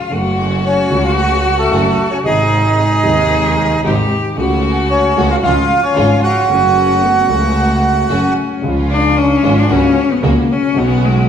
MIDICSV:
0, 0, Header, 1, 6, 480
1, 0, Start_track
1, 0, Key_signature, 3, "minor"
1, 0, Tempo, 532387
1, 102, Time_signature, 4, 2, 24, 8
1, 10177, End_track
2, 0, Start_track
2, 0, Title_t, "Bandoneon"
2, 0, Program_c, 0, 23
2, 594, Note_on_c, 0, 73, 71
2, 602, Note_on_c, 0, 61, 54
2, 927, Note_off_c, 0, 73, 0
2, 932, Note_off_c, 0, 61, 0
2, 946, Note_on_c, 0, 77, 73
2, 957, Note_on_c, 0, 65, 58
2, 1001, Note_off_c, 0, 77, 0
2, 1010, Note_off_c, 0, 65, 0
2, 1063, Note_on_c, 0, 78, 84
2, 1079, Note_on_c, 0, 66, 64
2, 1402, Note_off_c, 0, 78, 0
2, 1411, Note_off_c, 0, 66, 0
2, 1430, Note_on_c, 0, 69, 75
2, 1440, Note_on_c, 0, 57, 58
2, 1882, Note_off_c, 0, 57, 0
2, 1902, Note_on_c, 0, 73, 71
2, 1922, Note_on_c, 0, 61, 58
2, 1924, Note_off_c, 0, 69, 0
2, 1958, Note_off_c, 0, 73, 0
2, 1974, Note_off_c, 0, 61, 0
2, 2027, Note_on_c, 0, 75, 81
2, 2044, Note_on_c, 0, 63, 59
2, 3429, Note_off_c, 0, 75, 0
2, 3438, Note_off_c, 0, 63, 0
2, 4421, Note_on_c, 0, 73, 73
2, 4426, Note_on_c, 0, 61, 54
2, 4757, Note_off_c, 0, 61, 0
2, 4779, Note_on_c, 0, 77, 73
2, 4784, Note_on_c, 0, 65, 57
2, 4790, Note_off_c, 0, 73, 0
2, 4833, Note_off_c, 0, 77, 0
2, 4837, Note_off_c, 0, 65, 0
2, 4901, Note_on_c, 0, 77, 88
2, 4902, Note_on_c, 0, 65, 67
2, 5233, Note_off_c, 0, 65, 0
2, 5259, Note_on_c, 0, 73, 78
2, 5268, Note_off_c, 0, 77, 0
2, 5268, Note_on_c, 0, 61, 61
2, 5591, Note_off_c, 0, 73, 0
2, 5595, Note_off_c, 0, 61, 0
2, 5622, Note_on_c, 0, 78, 95
2, 5629, Note_on_c, 0, 66, 75
2, 7512, Note_off_c, 0, 78, 0
2, 7515, Note_off_c, 0, 66, 0
2, 10177, End_track
3, 0, Start_track
3, 0, Title_t, "Cello"
3, 0, Program_c, 1, 42
3, 0, Note_on_c, 1, 65, 72
3, 104, Note_on_c, 1, 66, 91
3, 118, Note_off_c, 1, 65, 0
3, 2022, Note_off_c, 1, 66, 0
3, 2028, Note_on_c, 1, 68, 79
3, 2475, Note_off_c, 1, 68, 0
3, 2508, Note_on_c, 1, 68, 89
3, 3429, Note_off_c, 1, 68, 0
3, 3474, Note_on_c, 1, 67, 77
3, 3914, Note_off_c, 1, 67, 0
3, 3950, Note_on_c, 1, 66, 86
3, 4894, Note_on_c, 1, 65, 81
3, 4908, Note_off_c, 1, 66, 0
3, 5851, Note_off_c, 1, 65, 0
3, 5857, Note_on_c, 1, 61, 74
3, 6330, Note_on_c, 1, 59, 70
3, 6344, Note_off_c, 1, 61, 0
3, 6569, Note_on_c, 1, 57, 72
3, 6582, Note_off_c, 1, 59, 0
3, 7309, Note_on_c, 1, 61, 63
3, 7322, Note_off_c, 1, 57, 0
3, 7791, Note_off_c, 1, 61, 0
3, 8031, Note_on_c, 1, 62, 83
3, 8270, Note_on_c, 1, 61, 86
3, 8284, Note_off_c, 1, 62, 0
3, 8643, Note_on_c, 1, 62, 73
3, 8657, Note_off_c, 1, 61, 0
3, 8755, Note_on_c, 1, 61, 85
3, 8768, Note_off_c, 1, 62, 0
3, 9119, Note_on_c, 1, 59, 74
3, 9133, Note_off_c, 1, 61, 0
3, 9233, Note_off_c, 1, 59, 0
3, 9240, Note_on_c, 1, 58, 74
3, 9485, Note_on_c, 1, 61, 79
3, 9499, Note_off_c, 1, 58, 0
3, 9718, Note_on_c, 1, 59, 80
3, 9731, Note_off_c, 1, 61, 0
3, 9953, Note_on_c, 1, 56, 69
3, 9967, Note_off_c, 1, 59, 0
3, 10177, Note_off_c, 1, 56, 0
3, 10177, End_track
4, 0, Start_track
4, 0, Title_t, "String section"
4, 0, Program_c, 2, 48
4, 100, Note_on_c, 2, 57, 65
4, 101, Note_on_c, 2, 61, 61
4, 102, Note_on_c, 2, 66, 71
4, 790, Note_off_c, 2, 57, 0
4, 791, Note_off_c, 2, 61, 0
4, 792, Note_off_c, 2, 66, 0
4, 826, Note_on_c, 2, 57, 64
4, 828, Note_on_c, 2, 61, 64
4, 830, Note_on_c, 2, 66, 80
4, 1514, Note_off_c, 2, 57, 0
4, 1515, Note_off_c, 2, 61, 0
4, 1515, Note_off_c, 2, 66, 0
4, 1550, Note_on_c, 2, 57, 62
4, 1550, Note_on_c, 2, 61, 55
4, 1550, Note_on_c, 2, 66, 68
4, 1751, Note_off_c, 2, 57, 0
4, 1752, Note_off_c, 2, 61, 0
4, 1752, Note_off_c, 2, 66, 0
4, 2026, Note_on_c, 2, 56, 70
4, 2027, Note_on_c, 2, 60, 62
4, 2027, Note_on_c, 2, 63, 73
4, 2712, Note_off_c, 2, 56, 0
4, 2712, Note_off_c, 2, 60, 0
4, 2712, Note_off_c, 2, 63, 0
4, 2741, Note_on_c, 2, 56, 74
4, 2741, Note_on_c, 2, 60, 63
4, 2742, Note_on_c, 2, 63, 81
4, 3426, Note_off_c, 2, 56, 0
4, 3426, Note_off_c, 2, 60, 0
4, 3427, Note_off_c, 2, 63, 0
4, 3462, Note_on_c, 2, 56, 64
4, 3463, Note_on_c, 2, 60, 61
4, 3465, Note_on_c, 2, 63, 74
4, 3664, Note_off_c, 2, 56, 0
4, 3665, Note_off_c, 2, 60, 0
4, 3666, Note_off_c, 2, 63, 0
4, 3948, Note_on_c, 2, 66, 80
4, 3949, Note_on_c, 2, 57, 71
4, 3950, Note_on_c, 2, 61, 68
4, 4626, Note_off_c, 2, 66, 0
4, 4627, Note_off_c, 2, 57, 0
4, 4628, Note_off_c, 2, 61, 0
4, 4657, Note_on_c, 2, 57, 69
4, 4657, Note_on_c, 2, 61, 61
4, 4662, Note_on_c, 2, 66, 77
4, 4859, Note_off_c, 2, 57, 0
4, 4859, Note_off_c, 2, 61, 0
4, 4861, Note_off_c, 2, 66, 0
4, 4901, Note_on_c, 2, 56, 65
4, 4901, Note_on_c, 2, 61, 59
4, 4903, Note_on_c, 2, 65, 75
4, 5100, Note_off_c, 2, 61, 0
4, 5101, Note_off_c, 2, 56, 0
4, 5101, Note_off_c, 2, 65, 0
4, 5378, Note_on_c, 2, 56, 68
4, 5379, Note_on_c, 2, 61, 66
4, 5380, Note_on_c, 2, 65, 80
4, 5577, Note_off_c, 2, 56, 0
4, 5578, Note_off_c, 2, 61, 0
4, 5578, Note_off_c, 2, 65, 0
4, 5856, Note_on_c, 2, 57, 69
4, 5857, Note_on_c, 2, 61, 67
4, 5861, Note_on_c, 2, 66, 73
4, 6538, Note_off_c, 2, 57, 0
4, 6539, Note_off_c, 2, 61, 0
4, 6541, Note_off_c, 2, 66, 0
4, 6573, Note_on_c, 2, 57, 71
4, 6575, Note_on_c, 2, 61, 63
4, 6576, Note_on_c, 2, 66, 76
4, 7264, Note_off_c, 2, 57, 0
4, 7265, Note_off_c, 2, 61, 0
4, 7265, Note_off_c, 2, 66, 0
4, 7290, Note_on_c, 2, 57, 62
4, 7293, Note_on_c, 2, 61, 57
4, 7296, Note_on_c, 2, 66, 72
4, 7500, Note_off_c, 2, 57, 0
4, 7501, Note_off_c, 2, 61, 0
4, 7503, Note_off_c, 2, 66, 0
4, 7786, Note_on_c, 2, 56, 69
4, 7789, Note_on_c, 2, 61, 64
4, 7791, Note_on_c, 2, 65, 79
4, 8471, Note_off_c, 2, 56, 0
4, 8472, Note_off_c, 2, 61, 0
4, 8473, Note_off_c, 2, 65, 0
4, 8502, Note_on_c, 2, 65, 76
4, 8503, Note_on_c, 2, 56, 66
4, 8503, Note_on_c, 2, 61, 57
4, 8706, Note_off_c, 2, 65, 0
4, 8707, Note_off_c, 2, 56, 0
4, 8707, Note_off_c, 2, 61, 0
4, 8737, Note_on_c, 2, 58, 68
4, 8742, Note_on_c, 2, 61, 59
4, 8743, Note_on_c, 2, 66, 73
4, 8944, Note_off_c, 2, 58, 0
4, 8946, Note_off_c, 2, 61, 0
4, 8947, Note_off_c, 2, 66, 0
4, 9220, Note_on_c, 2, 58, 67
4, 9224, Note_on_c, 2, 61, 61
4, 9227, Note_on_c, 2, 66, 73
4, 9424, Note_off_c, 2, 58, 0
4, 9426, Note_off_c, 2, 61, 0
4, 9428, Note_off_c, 2, 66, 0
4, 9695, Note_on_c, 2, 59, 75
4, 9697, Note_on_c, 2, 61, 69
4, 9697, Note_on_c, 2, 66, 79
4, 10177, Note_off_c, 2, 59, 0
4, 10177, Note_off_c, 2, 61, 0
4, 10177, Note_off_c, 2, 66, 0
4, 10177, End_track
5, 0, Start_track
5, 0, Title_t, "Grand piano"
5, 0, Program_c, 3, 0
5, 84, Note_on_c, 3, 49, 56
5, 97, Note_on_c, 3, 54, 64
5, 100, Note_on_c, 3, 42, 63
5, 108, Note_on_c, 3, 57, 48
5, 120, Note_on_c, 3, 66, 60
5, 783, Note_off_c, 3, 49, 0
5, 791, Note_off_c, 3, 42, 0
5, 793, Note_off_c, 3, 54, 0
5, 794, Note_off_c, 3, 57, 0
5, 801, Note_off_c, 3, 66, 0
5, 805, Note_on_c, 3, 49, 64
5, 814, Note_on_c, 3, 54, 52
5, 823, Note_on_c, 3, 37, 63
5, 828, Note_on_c, 3, 57, 51
5, 839, Note_on_c, 3, 66, 61
5, 1508, Note_off_c, 3, 54, 0
5, 1512, Note_off_c, 3, 37, 0
5, 1512, Note_off_c, 3, 49, 0
5, 1515, Note_off_c, 3, 57, 0
5, 1520, Note_off_c, 3, 66, 0
5, 1542, Note_on_c, 3, 42, 65
5, 1543, Note_on_c, 3, 54, 68
5, 1544, Note_on_c, 3, 49, 58
5, 1545, Note_on_c, 3, 57, 50
5, 1545, Note_on_c, 3, 66, 62
5, 1748, Note_off_c, 3, 42, 0
5, 1749, Note_off_c, 3, 49, 0
5, 1749, Note_off_c, 3, 54, 0
5, 1749, Note_off_c, 3, 57, 0
5, 1749, Note_off_c, 3, 66, 0
5, 2015, Note_on_c, 3, 48, 59
5, 2028, Note_on_c, 3, 51, 52
5, 2035, Note_on_c, 3, 32, 70
5, 2037, Note_on_c, 3, 44, 67
5, 2045, Note_on_c, 3, 56, 53
5, 2052, Note_on_c, 3, 63, 60
5, 2707, Note_off_c, 3, 48, 0
5, 2713, Note_off_c, 3, 51, 0
5, 2716, Note_off_c, 3, 32, 0
5, 2717, Note_off_c, 3, 44, 0
5, 2721, Note_off_c, 3, 56, 0
5, 2725, Note_off_c, 3, 63, 0
5, 2732, Note_on_c, 3, 48, 60
5, 2747, Note_on_c, 3, 51, 54
5, 2750, Note_on_c, 3, 27, 69
5, 2751, Note_on_c, 3, 39, 65
5, 2754, Note_on_c, 3, 56, 51
5, 2766, Note_on_c, 3, 63, 64
5, 3422, Note_off_c, 3, 48, 0
5, 3429, Note_off_c, 3, 51, 0
5, 3431, Note_off_c, 3, 27, 0
5, 3431, Note_off_c, 3, 39, 0
5, 3433, Note_off_c, 3, 56, 0
5, 3439, Note_off_c, 3, 63, 0
5, 3458, Note_on_c, 3, 48, 58
5, 3459, Note_on_c, 3, 56, 54
5, 3461, Note_on_c, 3, 44, 70
5, 3461, Note_on_c, 3, 51, 53
5, 3464, Note_on_c, 3, 32, 70
5, 3465, Note_on_c, 3, 63, 62
5, 3662, Note_off_c, 3, 48, 0
5, 3663, Note_off_c, 3, 56, 0
5, 3664, Note_off_c, 3, 44, 0
5, 3664, Note_off_c, 3, 51, 0
5, 3665, Note_off_c, 3, 32, 0
5, 3666, Note_off_c, 3, 63, 0
5, 3925, Note_on_c, 3, 49, 59
5, 3935, Note_on_c, 3, 54, 54
5, 3938, Note_off_c, 3, 49, 0
5, 3944, Note_on_c, 3, 37, 68
5, 3944, Note_on_c, 3, 49, 70
5, 3949, Note_on_c, 3, 57, 51
5, 3960, Note_on_c, 3, 66, 63
5, 4620, Note_off_c, 3, 54, 0
5, 4624, Note_off_c, 3, 49, 0
5, 4625, Note_off_c, 3, 37, 0
5, 4627, Note_off_c, 3, 57, 0
5, 4633, Note_off_c, 3, 66, 0
5, 4656, Note_on_c, 3, 54, 53
5, 4657, Note_on_c, 3, 49, 70
5, 4659, Note_on_c, 3, 37, 68
5, 4660, Note_on_c, 3, 66, 69
5, 4661, Note_on_c, 3, 57, 55
5, 4858, Note_off_c, 3, 54, 0
5, 4860, Note_off_c, 3, 37, 0
5, 4860, Note_off_c, 3, 49, 0
5, 4861, Note_off_c, 3, 57, 0
5, 4861, Note_off_c, 3, 66, 0
5, 4897, Note_on_c, 3, 49, 68
5, 4898, Note_on_c, 3, 37, 77
5, 4898, Note_on_c, 3, 53, 58
5, 4901, Note_on_c, 3, 56, 60
5, 4901, Note_on_c, 3, 65, 67
5, 5099, Note_off_c, 3, 37, 0
5, 5099, Note_off_c, 3, 53, 0
5, 5100, Note_off_c, 3, 49, 0
5, 5100, Note_off_c, 3, 56, 0
5, 5100, Note_off_c, 3, 65, 0
5, 5377, Note_on_c, 3, 49, 66
5, 5377, Note_on_c, 3, 53, 56
5, 5378, Note_on_c, 3, 32, 74
5, 5380, Note_on_c, 3, 44, 72
5, 5382, Note_on_c, 3, 56, 58
5, 5382, Note_on_c, 3, 65, 69
5, 5577, Note_off_c, 3, 32, 0
5, 5577, Note_off_c, 3, 49, 0
5, 5577, Note_off_c, 3, 53, 0
5, 5578, Note_off_c, 3, 44, 0
5, 5579, Note_off_c, 3, 56, 0
5, 5579, Note_off_c, 3, 65, 0
5, 5832, Note_on_c, 3, 49, 61
5, 5848, Note_on_c, 3, 54, 71
5, 5854, Note_on_c, 3, 42, 74
5, 5862, Note_on_c, 3, 57, 56
5, 5873, Note_on_c, 3, 66, 67
5, 6526, Note_off_c, 3, 49, 0
5, 6537, Note_off_c, 3, 42, 0
5, 6537, Note_off_c, 3, 54, 0
5, 6541, Note_off_c, 3, 57, 0
5, 6547, Note_off_c, 3, 66, 0
5, 6557, Note_on_c, 3, 49, 59
5, 6567, Note_on_c, 3, 54, 52
5, 6571, Note_off_c, 3, 49, 0
5, 6571, Note_on_c, 3, 37, 67
5, 6575, Note_on_c, 3, 49, 66
5, 6578, Note_on_c, 3, 57, 53
5, 6591, Note_on_c, 3, 66, 61
5, 7261, Note_off_c, 3, 54, 0
5, 7263, Note_off_c, 3, 37, 0
5, 7265, Note_off_c, 3, 49, 0
5, 7267, Note_off_c, 3, 57, 0
5, 7273, Note_off_c, 3, 66, 0
5, 7296, Note_on_c, 3, 54, 65
5, 7297, Note_on_c, 3, 49, 54
5, 7300, Note_on_c, 3, 57, 53
5, 7302, Note_on_c, 3, 42, 62
5, 7302, Note_on_c, 3, 66, 63
5, 7504, Note_off_c, 3, 49, 0
5, 7505, Note_off_c, 3, 54, 0
5, 7505, Note_off_c, 3, 57, 0
5, 7506, Note_off_c, 3, 42, 0
5, 7506, Note_off_c, 3, 66, 0
5, 7769, Note_on_c, 3, 49, 59
5, 7778, Note_on_c, 3, 53, 51
5, 7783, Note_off_c, 3, 49, 0
5, 7786, Note_on_c, 3, 37, 67
5, 7790, Note_on_c, 3, 49, 67
5, 7792, Note_on_c, 3, 56, 53
5, 7802, Note_on_c, 3, 65, 62
5, 8467, Note_off_c, 3, 53, 0
5, 8471, Note_off_c, 3, 37, 0
5, 8473, Note_off_c, 3, 49, 0
5, 8474, Note_off_c, 3, 56, 0
5, 8479, Note_off_c, 3, 65, 0
5, 8503, Note_on_c, 3, 49, 63
5, 8504, Note_on_c, 3, 32, 69
5, 8506, Note_on_c, 3, 44, 69
5, 8508, Note_on_c, 3, 53, 54
5, 8508, Note_on_c, 3, 56, 53
5, 8508, Note_on_c, 3, 65, 64
5, 8707, Note_off_c, 3, 32, 0
5, 8707, Note_off_c, 3, 49, 0
5, 8708, Note_off_c, 3, 44, 0
5, 8709, Note_off_c, 3, 53, 0
5, 8709, Note_off_c, 3, 56, 0
5, 8709, Note_off_c, 3, 65, 0
5, 8742, Note_on_c, 3, 49, 71
5, 8744, Note_on_c, 3, 37, 73
5, 8744, Note_on_c, 3, 54, 55
5, 8747, Note_on_c, 3, 58, 54
5, 8750, Note_on_c, 3, 66, 67
5, 8947, Note_off_c, 3, 37, 0
5, 8947, Note_off_c, 3, 49, 0
5, 8947, Note_off_c, 3, 54, 0
5, 8949, Note_off_c, 3, 58, 0
5, 8950, Note_off_c, 3, 66, 0
5, 9225, Note_on_c, 3, 37, 71
5, 9226, Note_on_c, 3, 49, 70
5, 9227, Note_on_c, 3, 58, 52
5, 9228, Note_on_c, 3, 54, 52
5, 9230, Note_on_c, 3, 66, 66
5, 9426, Note_off_c, 3, 37, 0
5, 9428, Note_off_c, 3, 49, 0
5, 9428, Note_off_c, 3, 54, 0
5, 9428, Note_off_c, 3, 58, 0
5, 9429, Note_off_c, 3, 66, 0
5, 9684, Note_on_c, 3, 49, 58
5, 9694, Note_on_c, 3, 54, 58
5, 9699, Note_on_c, 3, 35, 71
5, 9701, Note_on_c, 3, 47, 71
5, 9704, Note_on_c, 3, 59, 56
5, 9713, Note_on_c, 3, 66, 68
5, 10177, Note_off_c, 3, 35, 0
5, 10177, Note_off_c, 3, 47, 0
5, 10177, Note_off_c, 3, 49, 0
5, 10177, Note_off_c, 3, 54, 0
5, 10177, Note_off_c, 3, 59, 0
5, 10177, Note_off_c, 3, 66, 0
5, 10177, End_track
6, 0, Start_track
6, 0, Title_t, "Double bass"
6, 0, Program_c, 4, 43
6, 100, Note_on_c, 4, 30, 77
6, 790, Note_off_c, 4, 30, 0
6, 829, Note_on_c, 4, 37, 76
6, 1515, Note_off_c, 4, 37, 0
6, 1549, Note_on_c, 4, 30, 75
6, 1751, Note_off_c, 4, 30, 0
6, 2030, Note_on_c, 4, 32, 77
6, 2714, Note_off_c, 4, 32, 0
6, 2751, Note_on_c, 4, 39, 82
6, 3431, Note_off_c, 4, 39, 0
6, 3464, Note_on_c, 4, 32, 76
6, 3665, Note_off_c, 4, 32, 0
6, 3944, Note_on_c, 4, 37, 82
6, 4625, Note_off_c, 4, 37, 0
6, 4664, Note_on_c, 4, 37, 80
6, 4863, Note_off_c, 4, 37, 0
6, 4896, Note_on_c, 4, 37, 74
6, 5098, Note_off_c, 4, 37, 0
6, 5366, Note_on_c, 4, 32, 78
6, 5571, Note_off_c, 4, 32, 0
6, 5850, Note_on_c, 4, 30, 82
6, 6535, Note_off_c, 4, 30, 0
6, 6571, Note_on_c, 4, 37, 74
6, 7263, Note_off_c, 4, 37, 0
6, 7300, Note_on_c, 4, 30, 69
6, 7505, Note_off_c, 4, 30, 0
6, 7785, Note_on_c, 4, 37, 82
6, 8470, Note_off_c, 4, 37, 0
6, 8504, Note_on_c, 4, 32, 81
6, 8707, Note_off_c, 4, 32, 0
6, 8744, Note_on_c, 4, 37, 76
6, 8947, Note_off_c, 4, 37, 0
6, 9222, Note_on_c, 4, 37, 83
6, 9425, Note_off_c, 4, 37, 0
6, 9701, Note_on_c, 4, 35, 86
6, 10177, Note_off_c, 4, 35, 0
6, 10177, End_track
0, 0, End_of_file